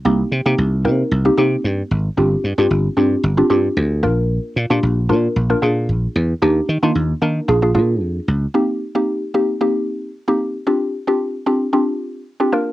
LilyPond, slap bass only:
\new Staff \with { instrumentName = "Slap bass" } { \clef bass \time 4/4 \key c \minor \tempo 4 = 113 c,8 c16 c16 c,8 c8 c,8 c8 g,8 aes,,8 | g,,8 g,16 g,16 g,,8 g,8 g,,8 g,8 d,8 bes,,8~ | bes,,8 bes,16 bes,16 bes,,8 bes,8 bes,,8 bes,8 bes,,8 e,8 | ees,8 ees16 ees16 ees,8 ees8 bes,,8 bes,8 f,8 des,8 |
r1 | r1 | }